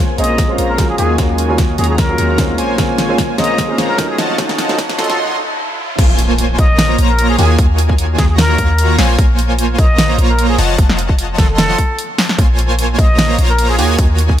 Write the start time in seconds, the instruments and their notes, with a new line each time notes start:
Already playing: 808-style bass A#1, analog polysynth A#3 F4 C5 C#5 G#5, riser
0.18 808-style bass A#1, felt piano G#3 C4 C#4 G#4, analog polysynth A#3 F4 C5 C#5 A#5, muted trumpet D#5, closed hi-hat
0.24 closed hi-hat
0.38 kick, snare, closed hi-hat
0.48 felt piano G#3 C4 C#4 F4
0.58 808-style bass A#1, analog polysynth A#3 F4 C5 C#5 A#5, closed hi-hat
0.70 muted trumpet A#4
0.77 felt piano F#3 G#3 C#4 F4, kick, snare, closed hi-hat
0.90 muted trumpet G#4
0.98 808-style bass D#2, analog polysynth D#3 A#3 F4 F#4 C#5 G#5, muted trumpet G#4, closed hi-hat
1.17 analog polysynth D#3 A#3 F4 F#4 C#5 G#5, felt piano F#3 G#3 C#4 F4, kick, snare, closed hi-hat
1.38 closed hi-hat
1.48 felt piano F#3 G#3 C#4 F4
1.58 kick, snare, closed hi-hat
1.77 808-style bass D#2, analog polysynth D#3 A#3 F4 F#4 C#5 A#5, felt piano F#3 G#3 C#4 F#4, muted trumpet G#4, closed hi-hat
1.84 closed hi-hat
1.90 muted trumpet G#4
1.98 muted trumpet A#4, kick, snare, closed hi-hat
2.08 felt piano F#3 G#3 C#4 F4
2.18 808-style bass D#2, analog polysynth D#3 A#3 F4 F#4 C#5 A#5, closed hi-hat
2.37 felt piano G#3 C4 C#4 F4, kick, snare, closed hi-hat
2.58 808-style bass A#1, analog polysynth A#3 F4 C5 C#5 G#5, closed hi-hat
2.77 808-style bass A#1, felt piano G#3 C4 C#4 F4, analog polysynth A#3 F4 C5 C#5 G#5, kick, snare, closed hi-hat
2.98 snare, closed hi-hat
3.08 felt piano G#3 C4 C#4 F4
3.18 kick, snare, closed hi-hat
3.37 808-style bass A#1, felt piano G#3 C4 C#4 G#4, analog polysynth A#3 F4 C5 C#5 A#5, muted trumpet D#5, snare, closed hi-hat
3.44 closed hi-hat
3.58 kick, snare, closed hi-hat
3.68 felt piano G#3 C4 C#4 F4
3.78 808-style bass A#1, analog polysynth A#3 F4 C5 C#5 A#5, snare, closed hi-hat
3.89 muted trumpet A#4
3.97 felt piano F#3 A3 C#4 D#4, kick, snare, closed hi-hat
4.09 muted trumpet G#4
4.18 808-style bass F1, analog polysynth F3 F4 C#5 D#5 F#5 A5, snare, closed hi-hat
4.37 808-style bass F1, analog polysynth F3 F4 C#5 D#5 F#5 A5, felt piano F#3 A3 C#4 D#4, kick, snare, closed hi-hat
4.49 snare
4.58 snare, closed hi-hat
4.68 felt piano F#3 A3 C#4 D#4, snare
4.78 kick, snare, closed hi-hat
4.89 snare
4.97 808-style bass F1, analog polysynth F3 F4 C#5 D#5 F#5 C6, felt piano F#3 A3 C#4 F4, muted trumpet A4, snare, closed hi-hat
5.04 closed hi-hat
5.10 muted trumpet A4, snare
5.99 808-style bass A#1, analog polysynth A#3 F4 C5 C#5 G#5, kick, closed hi-hat, crash, impact
6.19 closed hi-hat
6.38 closed hi-hat
6.58 808-style bass A#1, analog polysynth A#3 F4 C5 C#5 A#5, muted trumpet D#5, kick, closed hi-hat
6.79 snare, closed hi-hat
6.99 808-style bass A#1, analog polysynth A#3 F4 C5 C#5 A#5, closed hi-hat
7.10 muted trumpet A#4
7.19 closed hi-hat
7.30 muted trumpet G#4
7.39 808-style bass D#2, analog polysynth D#3 A#3 F4 F#4 C#5 G#5, muted trumpet G#4, open hi-hat
7.59 808-style bass D#2, analog polysynth D#3 A#3 F4 F#4 C#5 G#5, kick, closed hi-hat
7.78 closed hi-hat
7.89 kick
7.98 closed hi-hat
8.18 808-style bass D#2, analog polysynth D#3 A#3 F4 F#4 C#5 A#5, muted trumpet G#4, kick, snare, closed hi-hat
8.30 muted trumpet G#4
8.38 muted trumpet A#4, snare, closed hi-hat
8.58 808-style bass D#2, analog polysynth D#3 A#3 F4 F#4 C#5 A#5, kick, closed hi-hat
8.78 closed hi-hat
8.98 808-style bass A#1, analog polysynth A#3 F4 C5 C#5 G#5, snare, open hi-hat
9.18 808-style bass A#1, analog polysynth A#3 F4 C5 C#5 G#5, kick, closed hi-hat
9.39 closed hi-hat
9.59 closed hi-hat
9.78 808-style bass A#1, analog polysynth A#3 F4 C5 C#5 A#5, muted trumpet D#5, kick, closed hi-hat
9.98 snare, closed hi-hat
10.18 808-style bass A#1, analog polysynth A#3 F4 C5 C#5 A#5, closed hi-hat
10.29 muted trumpet A#4
10.39 closed hi-hat
10.50 muted trumpet G#4
10.58 808-style bass F1, analog polysynth F3 F4 C#5 D#5 F#5 A5, open hi-hat
10.78 808-style bass F1, analog polysynth F3 F4 C#5 D#5 F#5 A5, kick, closed hi-hat
10.90 snare
10.99 closed hi-hat
11.09 kick
11.19 closed hi-hat
11.38 808-style bass F1, analog polysynth F3 F4 C#5 D#5 F#5 C6, muted trumpet A4, kick, snare, closed hi-hat
11.49 muted trumpet A4
11.58 snare, closed hi-hat
11.78 kick, closed hi-hat
11.99 closed hi-hat
12.18 snare, open hi-hat
12.29 snare
12.38 808-style bass A#1, analog polysynth A#3 F4 C5 C#5 G#5, kick, closed hi-hat
12.59 closed hi-hat
12.79 closed hi-hat
12.98 808-style bass A#1, analog polysynth A#3 F4 C5 C#5 A#5, muted trumpet D#5, kick, closed hi-hat
13.19 snare, closed hi-hat
13.38 808-style bass A#1, analog polysynth A#3 F4 C5 C#5 A#5, closed hi-hat
13.50 muted trumpet A#4
13.59 closed hi-hat
13.70 muted trumpet G#4
13.78 808-style bass D#2, analog polysynth D#3 A#3 F4 F#4 C#5 G#5, muted trumpet G#4, open hi-hat
13.98 808-style bass D#2, analog polysynth D#3 A#3 F4 F#4 C#5 G#5, kick, closed hi-hat
14.18 closed hi-hat
14.30 kick